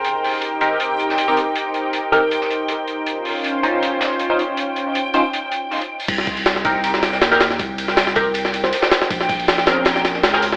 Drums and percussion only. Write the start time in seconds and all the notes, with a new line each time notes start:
0.04 closed hi-hat
0.24 open hi-hat
0.42 closed hi-hat
0.61 closed hi-hat
0.80 closed hi-hat
1.00 closed hi-hat
1.09 snare
1.18 closed hi-hat
1.37 closed hi-hat
1.55 closed hi-hat
1.74 closed hi-hat
1.93 closed hi-hat
2.13 closed hi-hat
2.31 closed hi-hat
2.41 snare
2.50 closed hi-hat
2.68 closed hi-hat
2.88 closed hi-hat
3.06 closed hi-hat
3.25 open hi-hat
3.44 closed hi-hat
3.63 closed hi-hat
3.83 closed hi-hat
4.01 snare, closed hi-hat
4.19 closed hi-hat
4.39 closed hi-hat
4.57 closed hi-hat
4.76 closed hi-hat
4.95 closed hi-hat
5.14 closed hi-hat
5.33 closed hi-hat
5.52 closed hi-hat
5.72 open hi-hat
5.82 closed hi-hat
6.00 open hi-hat
6.08 kick, closed hi-hat, crash, ride
6.18 snare
6.27 kick, open hi-hat, ride
6.37 ride
6.46 snare, closed hi-hat, ride
6.56 snare
6.65 kick, closed hi-hat, ride
6.84 closed hi-hat, ride
6.94 snare
7.03 snare, closed hi-hat, ride
7.12 snare
7.21 snare, closed hi-hat, ride
7.32 snare
7.40 snare, closed hi-hat, ride
7.50 snare
7.59 kick, closed hi-hat, ride
7.78 closed hi-hat, ride
7.88 snare
7.96 snare, closed hi-hat, ride
8.07 snare
8.15 kick, closed hi-hat, ride
8.34 closed hi-hat, ride
8.45 snare
8.53 closed hi-hat, ride
8.64 snare
8.73 closed hi-hat, ride
8.82 snare
8.91 snare, closed hi-hat, ride
9.02 snare
9.10 kick, closed hi-hat, ride
9.21 snare
9.29 kick, open hi-hat, ride
9.40 ride
9.48 snare, closed hi-hat, ride
9.58 snare
9.66 snare, closed hi-hat, ride
9.85 snare, closed hi-hat, ride
9.96 snare
10.05 snare, closed hi-hat, ride
10.14 snare
10.23 snare, closed hi-hat, ride
10.34 snare
10.42 closed hi-hat, open hi-hat
10.52 snare